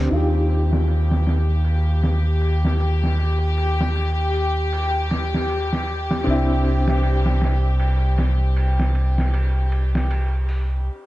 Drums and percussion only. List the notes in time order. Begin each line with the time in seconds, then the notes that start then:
0.11 ride
0.49 ride
0.73 snare
0.88 ride
1.11 snare
1.26 snare, ride
1.64 ride
2.03 snare, ride
2.41 ride
2.65 snare
2.80 ride
3.04 snare
3.18 ride
3.57 ride
3.81 snare
3.95 ride
4.34 open hi-hat
4.72 ride
5.11 snare, ride
5.34 snare
5.49 ride
5.73 snare
5.87 ride
6.11 snare
6.26 ride
6.64 ride
6.88 snare
7.03 ride
7.26 snare
7.41 snare, ride
7.80 ride
8.18 snare, ride
8.56 ride
8.80 snare
8.95 ride
9.18 snare
9.34 ride
9.72 ride
9.95 snare
10.11 ride
10.49 open hi-hat